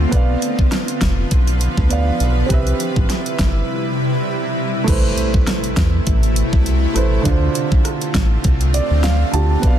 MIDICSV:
0, 0, Header, 1, 6, 480
1, 0, Start_track
1, 0, Key_signature, 0, "minor"
1, 0, Tempo, 594059
1, 101, Time_signature, 4, 2, 24, 8
1, 7910, End_track
2, 0, Start_track
2, 0, Title_t, "Grand piano"
2, 0, Program_c, 0, 0
2, 0, Control_c, 0, 64, 127
2, 0, Note_on_c, 0, 72, 78
2, 72, Note_on_c, 0, 59, 74
2, 84, Note_off_c, 0, 72, 0
2, 92, Note_on_c, 0, 71, 71
2, 111, Note_on_c, 0, 74, 65
2, 112, Control_c, 0, 64, 0
2, 131, Note_on_c, 0, 77, 78
2, 265, Control_c, 0, 64, 127
2, 1497, Note_off_c, 0, 59, 0
2, 1508, Note_off_c, 0, 71, 0
2, 1518, Note_off_c, 0, 74, 0
2, 1525, Note_on_c, 0, 59, 60
2, 1528, Note_off_c, 0, 77, 0
2, 1535, Note_on_c, 0, 71, 51
2, 1546, Note_on_c, 0, 74, 55
2, 1556, Note_on_c, 0, 77, 67
2, 1990, Note_on_c, 0, 60, 76
2, 2010, Note_on_c, 0, 67, 70
2, 2013, Note_off_c, 0, 59, 0
2, 2017, Note_off_c, 0, 71, 0
2, 2023, Note_off_c, 0, 74, 0
2, 2028, Note_off_c, 0, 77, 0
2, 2029, Note_on_c, 0, 71, 69
2, 2034, Control_c, 0, 64, 0
2, 2050, Note_on_c, 0, 76, 83
2, 2178, Control_c, 0, 64, 127
2, 3893, Note_off_c, 0, 60, 0
2, 3903, Note_off_c, 0, 67, 0
2, 3912, Note_on_c, 0, 57, 77
2, 3913, Note_off_c, 0, 71, 0
2, 3923, Note_off_c, 0, 76, 0
2, 3932, Note_on_c, 0, 64, 70
2, 3950, Control_c, 0, 64, 0
2, 3952, Note_on_c, 0, 71, 71
2, 3971, Note_on_c, 0, 72, 83
2, 4073, Control_c, 0, 64, 127
2, 5574, Note_off_c, 0, 57, 0
2, 5584, Note_off_c, 0, 64, 0
2, 5595, Note_off_c, 0, 71, 0
2, 5604, Note_off_c, 0, 72, 0
2, 5607, Note_on_c, 0, 57, 59
2, 5617, Note_on_c, 0, 64, 56
2, 5627, Note_on_c, 0, 71, 55
2, 5636, Note_on_c, 0, 72, 69
2, 5832, Note_on_c, 0, 50, 77
2, 5852, Note_on_c, 0, 62, 72
2, 5854, Note_off_c, 0, 57, 0
2, 5859, Note_off_c, 0, 64, 0
2, 5864, Note_off_c, 0, 71, 0
2, 5869, Note_off_c, 0, 72, 0
2, 5872, Control_c, 0, 64, 0
2, 5872, Note_on_c, 0, 65, 71
2, 5891, Note_on_c, 0, 72, 81
2, 6030, Control_c, 0, 64, 127
2, 7063, Note_on_c, 0, 74, 81
2, 7285, Note_off_c, 0, 74, 0
2, 7302, Note_on_c, 0, 77, 76
2, 7494, Note_off_c, 0, 50, 0
2, 7505, Note_off_c, 0, 62, 0
2, 7514, Note_off_c, 0, 65, 0
2, 7524, Note_off_c, 0, 72, 0
2, 7525, Note_off_c, 0, 77, 0
2, 7527, Note_on_c, 0, 50, 64
2, 7538, Note_on_c, 0, 62, 57
2, 7542, Note_on_c, 0, 81, 78
2, 7548, Note_on_c, 0, 65, 57
2, 7558, Note_on_c, 0, 67, 68
2, 7752, Note_on_c, 0, 59, 76
2, 7765, Note_off_c, 0, 81, 0
2, 7772, Note_on_c, 0, 71, 69
2, 7774, Note_off_c, 0, 50, 0
2, 7780, Note_off_c, 0, 62, 0
2, 7784, Note_off_c, 0, 65, 0
2, 7790, Note_off_c, 0, 67, 0
2, 7792, Control_c, 0, 64, 0
2, 7792, Note_on_c, 0, 74, 71
2, 7812, Note_on_c, 0, 77, 89
2, 7910, Note_off_c, 0, 59, 0
2, 7910, Note_off_c, 0, 71, 0
2, 7910, Note_off_c, 0, 74, 0
2, 7910, Note_off_c, 0, 77, 0
2, 7910, End_track
3, 0, Start_track
3, 0, Title_t, "Ambient pad"
3, 0, Program_c, 1, 92
3, 0, Note_on_c, 1, 50, 76
3, 0, Note_on_c, 1, 60, 74
3, 0, Note_on_c, 1, 65, 86
3, 81, Note_off_c, 1, 60, 0
3, 102, Note_on_c, 1, 53, 72
3, 103, Note_on_c, 1, 71, 73
3, 1988, Note_off_c, 1, 50, 0
3, 1989, Note_off_c, 1, 65, 0
3, 2003, Note_off_c, 1, 53, 0
3, 2021, Note_on_c, 1, 55, 75
3, 2022, Note_on_c, 1, 64, 86
3, 2023, Note_on_c, 1, 48, 81
3, 3910, Note_off_c, 1, 71, 0
3, 3922, Note_off_c, 1, 55, 0
3, 3922, Note_off_c, 1, 64, 0
3, 3923, Note_off_c, 1, 48, 0
3, 3944, Note_on_c, 1, 64, 88
3, 3945, Note_on_c, 1, 47, 74
3, 3945, Note_on_c, 1, 48, 81
3, 3945, Note_on_c, 1, 57, 73
3, 5843, Note_off_c, 1, 64, 0
3, 5844, Note_off_c, 1, 47, 0
3, 5844, Note_off_c, 1, 48, 0
3, 5844, Note_off_c, 1, 57, 0
3, 5863, Note_on_c, 1, 65, 91
3, 5864, Note_on_c, 1, 50, 78
3, 5864, Note_on_c, 1, 57, 72
3, 5864, Note_on_c, 1, 60, 73
3, 7764, Note_off_c, 1, 57, 0
3, 7764, Note_off_c, 1, 60, 0
3, 7781, Note_on_c, 1, 53, 76
3, 7781, Note_on_c, 1, 59, 71
3, 7910, Note_off_c, 1, 50, 0
3, 7910, Note_off_c, 1, 53, 0
3, 7910, Note_off_c, 1, 59, 0
3, 7910, Note_off_c, 1, 65, 0
3, 7910, End_track
4, 0, Start_track
4, 0, Title_t, "Analog synth bass"
4, 0, Program_c, 2, 38
4, 101, Note_on_c, 2, 35, 105
4, 290, Note_off_c, 2, 35, 0
4, 475, Note_on_c, 2, 36, 85
4, 558, Note_off_c, 2, 36, 0
4, 819, Note_on_c, 2, 29, 94
4, 1009, Note_off_c, 2, 29, 0
4, 1063, Note_on_c, 2, 35, 95
4, 1357, Note_off_c, 2, 35, 0
4, 1434, Note_on_c, 2, 38, 93
4, 1707, Note_off_c, 2, 38, 0
4, 1780, Note_on_c, 2, 35, 99
4, 1969, Note_off_c, 2, 35, 0
4, 2020, Note_on_c, 2, 36, 105
4, 2210, Note_off_c, 2, 36, 0
4, 2394, Note_on_c, 2, 33, 91
4, 2478, Note_off_c, 2, 33, 0
4, 2739, Note_on_c, 2, 31, 95
4, 2929, Note_off_c, 2, 31, 0
4, 3941, Note_on_c, 2, 33, 103
4, 4130, Note_off_c, 2, 33, 0
4, 4315, Note_on_c, 2, 36, 88
4, 4398, Note_off_c, 2, 36, 0
4, 4661, Note_on_c, 2, 40, 92
4, 4850, Note_off_c, 2, 40, 0
4, 4904, Note_on_c, 2, 33, 100
4, 5198, Note_off_c, 2, 33, 0
4, 5276, Note_on_c, 2, 36, 104
4, 5548, Note_off_c, 2, 36, 0
4, 5621, Note_on_c, 2, 33, 93
4, 5810, Note_off_c, 2, 33, 0
4, 5862, Note_on_c, 2, 38, 104
4, 6050, Note_off_c, 2, 38, 0
4, 6236, Note_on_c, 2, 35, 91
4, 6319, Note_off_c, 2, 35, 0
4, 6581, Note_on_c, 2, 33, 95
4, 6770, Note_off_c, 2, 33, 0
4, 6824, Note_on_c, 2, 36, 94
4, 7118, Note_off_c, 2, 36, 0
4, 7197, Note_on_c, 2, 38, 96
4, 7469, Note_off_c, 2, 38, 0
4, 7543, Note_on_c, 2, 38, 99
4, 7731, Note_off_c, 2, 38, 0
4, 7782, Note_on_c, 2, 35, 106
4, 7910, Note_off_c, 2, 35, 0
4, 7910, End_track
5, 0, Start_track
5, 0, Title_t, "Impact"
5, 0, Program_c, 3, 103
5, 3941, Note_on_c, 3, 60, 90
5, 5861, Note_off_c, 3, 60, 0
5, 7910, End_track
6, 0, Start_track
6, 0, Title_t, "Drums"
6, 101, Note_on_c, 9, 36, 113
6, 101, Note_on_c, 9, 42, 74
6, 181, Note_off_c, 9, 36, 0
6, 182, Note_off_c, 9, 42, 0
6, 341, Note_on_c, 9, 42, 72
6, 422, Note_off_c, 9, 42, 0
6, 474, Note_on_c, 9, 36, 89
6, 555, Note_off_c, 9, 36, 0
6, 579, Note_on_c, 9, 37, 61
6, 579, Note_on_c, 9, 38, 104
6, 580, Note_on_c, 9, 42, 68
6, 660, Note_off_c, 9, 37, 0
6, 660, Note_off_c, 9, 38, 0
6, 661, Note_off_c, 9, 42, 0
6, 713, Note_on_c, 9, 42, 58
6, 794, Note_off_c, 9, 42, 0
6, 819, Note_on_c, 9, 36, 91
6, 820, Note_on_c, 9, 38, 112
6, 820, Note_on_c, 9, 42, 71
6, 900, Note_off_c, 9, 36, 0
6, 901, Note_off_c, 9, 38, 0
6, 901, Note_off_c, 9, 42, 0
6, 1059, Note_on_c, 9, 42, 63
6, 1063, Note_on_c, 9, 36, 100
6, 1140, Note_off_c, 9, 42, 0
6, 1143, Note_off_c, 9, 36, 0
6, 1192, Note_on_c, 9, 42, 51
6, 1273, Note_off_c, 9, 42, 0
6, 1300, Note_on_c, 9, 42, 80
6, 1380, Note_off_c, 9, 42, 0
6, 1434, Note_on_c, 9, 36, 97
6, 1515, Note_off_c, 9, 36, 0
6, 1539, Note_on_c, 9, 42, 80
6, 1620, Note_off_c, 9, 42, 0
6, 1780, Note_on_c, 9, 42, 61
6, 1861, Note_off_c, 9, 42, 0
6, 2021, Note_on_c, 9, 36, 109
6, 2021, Note_on_c, 9, 42, 72
6, 2101, Note_off_c, 9, 36, 0
6, 2101, Note_off_c, 9, 42, 0
6, 2155, Note_on_c, 9, 42, 49
6, 2236, Note_off_c, 9, 42, 0
6, 2262, Note_on_c, 9, 42, 77
6, 2343, Note_off_c, 9, 42, 0
6, 2395, Note_on_c, 9, 36, 90
6, 2475, Note_off_c, 9, 36, 0
6, 2502, Note_on_c, 9, 38, 62
6, 2502, Note_on_c, 9, 42, 71
6, 2582, Note_off_c, 9, 38, 0
6, 2583, Note_off_c, 9, 42, 0
6, 2635, Note_on_c, 9, 42, 55
6, 2716, Note_off_c, 9, 42, 0
6, 2740, Note_on_c, 9, 36, 92
6, 2741, Note_on_c, 9, 38, 108
6, 2741, Note_on_c, 9, 42, 72
6, 2820, Note_off_c, 9, 36, 0
6, 2822, Note_off_c, 9, 38, 0
6, 2822, Note_off_c, 9, 42, 0
6, 3941, Note_on_c, 9, 36, 115
6, 3941, Note_on_c, 9, 42, 72
6, 3942, Note_on_c, 9, 49, 101
6, 4022, Note_off_c, 9, 36, 0
6, 4022, Note_off_c, 9, 42, 0
6, 4022, Note_off_c, 9, 49, 0
6, 4182, Note_on_c, 9, 42, 75
6, 4263, Note_off_c, 9, 42, 0
6, 4315, Note_on_c, 9, 36, 94
6, 4396, Note_off_c, 9, 36, 0
6, 4422, Note_on_c, 9, 37, 65
6, 4422, Note_on_c, 9, 38, 107
6, 4422, Note_on_c, 9, 42, 75
6, 4503, Note_off_c, 9, 37, 0
6, 4503, Note_off_c, 9, 38, 0
6, 4503, Note_off_c, 9, 42, 0
6, 4555, Note_on_c, 9, 42, 55
6, 4636, Note_off_c, 9, 42, 0
6, 4660, Note_on_c, 9, 36, 91
6, 4662, Note_on_c, 9, 38, 118
6, 4662, Note_on_c, 9, 42, 73
6, 4741, Note_off_c, 9, 36, 0
6, 4742, Note_off_c, 9, 38, 0
6, 4742, Note_off_c, 9, 42, 0
6, 4902, Note_on_c, 9, 42, 65
6, 4904, Note_on_c, 9, 36, 101
6, 4983, Note_off_c, 9, 42, 0
6, 4985, Note_off_c, 9, 36, 0
6, 5035, Note_on_c, 9, 42, 52
6, 5116, Note_off_c, 9, 42, 0
6, 5141, Note_on_c, 9, 42, 84
6, 5222, Note_off_c, 9, 42, 0
6, 5276, Note_on_c, 9, 36, 97
6, 5356, Note_off_c, 9, 36, 0
6, 5382, Note_on_c, 9, 42, 80
6, 5463, Note_off_c, 9, 42, 0
6, 5622, Note_on_c, 9, 42, 64
6, 5702, Note_off_c, 9, 42, 0
6, 5861, Note_on_c, 9, 42, 74
6, 5862, Note_on_c, 9, 36, 110
6, 5942, Note_off_c, 9, 42, 0
6, 5943, Note_off_c, 9, 36, 0
6, 6103, Note_on_c, 9, 42, 76
6, 6183, Note_off_c, 9, 42, 0
6, 6236, Note_on_c, 9, 36, 91
6, 6317, Note_off_c, 9, 36, 0
6, 6342, Note_on_c, 9, 37, 65
6, 6343, Note_on_c, 9, 42, 75
6, 6423, Note_off_c, 9, 37, 0
6, 6424, Note_off_c, 9, 42, 0
6, 6476, Note_on_c, 9, 42, 57
6, 6557, Note_off_c, 9, 42, 0
6, 6581, Note_on_c, 9, 36, 98
6, 6582, Note_on_c, 9, 38, 115
6, 6582, Note_on_c, 9, 42, 73
6, 6662, Note_off_c, 9, 36, 0
6, 6663, Note_off_c, 9, 38, 0
6, 6663, Note_off_c, 9, 42, 0
6, 6821, Note_on_c, 9, 42, 62
6, 6824, Note_on_c, 9, 36, 103
6, 6901, Note_off_c, 9, 42, 0
6, 6905, Note_off_c, 9, 36, 0
6, 6954, Note_on_c, 9, 42, 54
6, 7035, Note_off_c, 9, 42, 0
6, 7063, Note_on_c, 9, 42, 88
6, 7144, Note_off_c, 9, 42, 0
6, 7302, Note_on_c, 9, 38, 117
6, 7302, Note_on_c, 9, 42, 81
6, 7383, Note_off_c, 9, 38, 0
6, 7383, Note_off_c, 9, 42, 0
6, 7543, Note_on_c, 9, 42, 66
6, 7624, Note_off_c, 9, 42, 0
6, 7782, Note_on_c, 9, 36, 113
6, 7782, Note_on_c, 9, 42, 71
6, 7863, Note_off_c, 9, 36, 0
6, 7863, Note_off_c, 9, 42, 0
6, 7910, End_track
0, 0, End_of_file